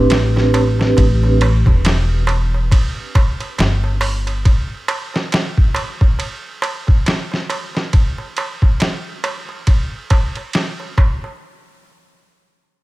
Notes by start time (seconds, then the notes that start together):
Already playing: A1 C4 D4 G4 B4
0.10 snare, ride, darbuka tek
0.36 snare, darbuka tek
0.54 ride, darbuka tek
0.79 snare, darbuka tek
0.97 A1, kick, ride, darbuka tek
1.23 darbuka tek
1.41 ride, darbuka tek
1.66 E1, kick, darbuka tek
1.85 snare, ride, darbuka tek
2.27 ride, darbuka tek
2.54 darbuka tek
2.71 kick, ride, darbuka tek
3.15 kick, ride, darbuka tek
3.40 ride, darbuka tek
3.58 G1, snare, ride, darbuka tek
3.84 darbuka tek
4.01 open hi-hat, darbuka tek
4.27 ride, darbuka tek
4.45 kick, ride, darbuka tek
4.88 ride, darbuka tek
5.14 snare, darbuka tek
5.32 snare, ride, darbuka tek
5.58 kick
5.75 ride, darbuka tek
6.01 kick, darbuka tek
6.19 ride, darbuka tek
6.62 ride, darbuka tek
6.87 kick, darbuka tek
7.06 snare, ride, darbuka tek
7.32 snare, darbuka tek
7.50 ride, darbuka tek
7.75 snare, darbuka tek
7.93 kick, ride, darbuka tek
8.18 darbuka tek
8.37 ride, darbuka tek
8.62 kick, darbuka tek
8.80 snare, ride, darbuka tek
9.24 ride, darbuka tek
9.49 darbuka tek
9.67 kick, ride, darbuka tek
10.10 kick, ride, darbuka tek
10.35 ride, darbuka tek
10.53 snare, ride, darbuka tek
10.80 darbuka tek
10.98 kick, darbuka tek
11.24 darbuka tek